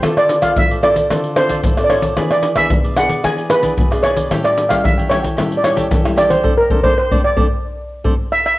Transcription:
Already playing: steel pan C5
0.02 nylon-string guitar D3 C4 F4 A4, cavaquinho F4 A4 C5 D5, pandeiro, tamborim, shaker, surdo
0.17 steel pan D5, pandeiro, tamborim, shaker
0.29 pandeiro, shaker
0.42 nylon-string guitar C4 F4 A4, cavaquinho F4 A4 C5 D5, steel pan F5, pandeiro, tamborim, shaker, surdo
0.56 nylon-string guitar A2, steel pan E5, pandeiro, shaker, surdo
0.71 cavaquinho A4 C5 D5, pandeiro, shaker
0.82 nylon-string guitar C4 F4 A4, cavaquinho F4 A4 C5 D5, steel pan D5, pandeiro, tamborim
0.95 cavaquinho A4 C5 D5, pandeiro, shaker, surdo
1.10 nylon-string guitar D3 C4 F4 A4, cavaquinho F4 A4 C5 D5, pandeiro, tamborim, shaker, surdo
1.24 pandeiro, shaker
1.36 nylon-string guitar C4 F4 A4, cavaquinho F4 A4 C5 D5, steel pan C5, pandeiro, tamborim
1.49 cavaquinho F4 A4 C5 D5, pandeiro, shaker, surdo
1.63 nylon-string guitar A2, cavaquinho F4 A4 C5 D5, pandeiro, shaker, surdo
1.77 nylon-string guitar C4 F4 A4, cavaquinho A4 C5 D5, pandeiro, tamborim, shaker
1.84 steel pan D5
1.90 cavaquinho F4 A4 C5 D5, steel pan C#5, pandeiro, tamborim
2.02 cavaquinho A4 C5 D5, pandeiro, shaker, surdo
2.17 nylon-string guitar E3 B3 D4 G#4, cavaquinho E4 G#4 B4 D5, pandeiro, tamborim, shaker, surdo
2.31 steel pan D5, pandeiro, tamborim, shaker
2.43 pandeiro, shaker
2.56 nylon-string guitar B3 D4 G#4, cavaquinho E4 G#4 B4 D5, steel pan E5, pandeiro, tamborim, shaker, surdo
2.70 nylon-string guitar B2, pandeiro, shaker, surdo
2.84 cavaquinho G#4 B4 D5, pandeiro, shaker
2.96 nylon-string guitar B3 D4 G#4, cavaquinho E4 G#4 B4 D5, steel pan F#5, pandeiro, tamborim
3.09 cavaquinho G#4 B4 D5, pandeiro, shaker, surdo
3.24 nylon-string guitar E3 B3 D4 G#4, cavaquinho E4 G#4 B4 D5, steel pan G#5, pandeiro, tamborim, shaker, surdo
3.38 pandeiro, shaker
3.50 nylon-string guitar B3 D4 G#4, cavaquinho E4 G#4 B4 D5, steel pan B4, pandeiro, tamborim
3.63 cavaquinho E4 G#4 B4 D5, pandeiro, shaker, surdo
3.77 nylon-string guitar B2, cavaquinho E4 G#4 B4 D5, pandeiro, shaker, surdo
3.91 nylon-string guitar B3 D4 G#4, cavaquinho G#4 B4 D5, pandeiro, tamborim, shaker
4.03 cavaquinho E4 G#4 B4 D5, steel pan C#5, pandeiro, tamborim
4.16 cavaquinho G#4 B4 D5, pandeiro, shaker, surdo
4.31 nylon-string guitar A2 G3 C#4 E4, cavaquinho G4 A4 C#5 G5, pandeiro, tamborim, shaker, surdo
4.45 steel pan D5, pandeiro, tamborim, shaker
4.58 pandeiro
4.69 nylon-string guitar G3 C#4 E4, cavaquinho G4 A4 C#5 G5, steel pan F5, pandeiro, tamborim, shaker, surdo
4.84 nylon-string guitar E3, steel pan E5, pandeiro, shaker, surdo
4.98 cavaquinho A4 C#5 G5, pandeiro, shaker
5.09 nylon-string guitar G3 C#4 E4, cavaquinho G4 A4 C#5 G5, steel pan C#5, pandeiro, tamborim
5.22 cavaquinho A4 C#5 G5, pandeiro, shaker, surdo
5.37 nylon-string guitar A2 G3 C#4 E4, cavaquinho G4 A4 C#5 G5, pandeiro, tamborim, shaker, surdo
5.52 pandeiro, shaker
5.57 steel pan D5
5.63 nylon-string guitar G3 C#4 E4, cavaquinho G4 A4 C#5 G5, steel pan C#5, pandeiro, tamborim, shaker
5.76 cavaquinho G4 A4 C#5 G5, pandeiro, shaker, surdo
5.91 nylon-string guitar E3, cavaquinho G4 A4 C#5 G5, pandeiro, shaker, surdo
6.04 nylon-string guitar G3 C#4 E4, cavaquinho A4 C#5 G5, pandeiro, tamborim, shaker
6.16 cavaquinho G4 A4 C#5 G5, steel pan D5, pandeiro, tamborim, shaker
6.30 cavaquinho A4 C#5 G5, steel pan C5, pandeiro, shaker, surdo
6.44 nylon-string guitar A3 C4 D4, cavaquinho A4 C5 D5, surdo
6.58 steel pan A#4
6.70 nylon-string guitar A3 C4 D4, cavaquinho A4 C5 D5, surdo
6.83 nylon-string guitar A3 C4 D4, cavaquinho A4 C5 D5, steel pan C5, surdo
6.98 steel pan C5
7.11 nylon-string guitar A3 C4 D4, cavaquinho A4 C5 D5, surdo
7.24 steel pan D5
7.36 nylon-string guitar A3 C4 D4, cavaquinho A4 C5 D5, surdo
8.04 nylon-string guitar A3 C4 D4, cavaquinho A4 C5 D5, surdo
8.32 steel pan E5
8.46 steel pan E5

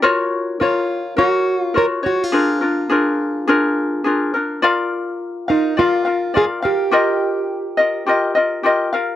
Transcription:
0.02 ukulele F4 F#4 A#4 C#5
0.60 ukulele F4 A#4 C#5, steel-string acoustic guitar F4
1.17 ukulele F#4 A#4 C#5, steel-string acoustic guitar F#4
1.61 steel-string acoustic guitar F4
1.74 ukulele F4 F#4 A#4 C#5, steel-string acoustic guitar A#4
2.03 ukulele F4 F#4 C#5, steel-string acoustic guitar F#4
2.24 steel-string acoustic guitar F4
2.32 ukulele D4 F4 G#4 A#4
2.61 ukulele D4 F4 A#4
2.90 ukulele D4 F4 G#4 A#4
3.47 ukulele D4 F4 G#4 A#4
4.04 ukulele D4 F4 G#4 A#4
4.34 ukulele D4 F4 A#4
4.62 ukulele F4 A#4 D5 F5
5.48 steel-string acoustic guitar D#4, ukulele F4 A#4 F5
5.77 ukulele F4 A#4 D5 F5, steel-string acoustic guitar F4
6.05 ukulele F4 A#4 F5
6.34 ukulele F4 A#4 D5 F5, steel-string acoustic guitar G#4
6.62 ukulele F4 A#4 F5, steel-string acoustic guitar G4
6.91 ukulele F4 G4 A#4 D#5
7.77 ukulele F4 A#4 D#5
8.06 ukulele F4 G4 A#4 D#5
8.35 ukulele F4 A#4 D#5
8.63 ukulele F4 G4 A#4 D#5
8.93 ukulele F4 A#4 F5

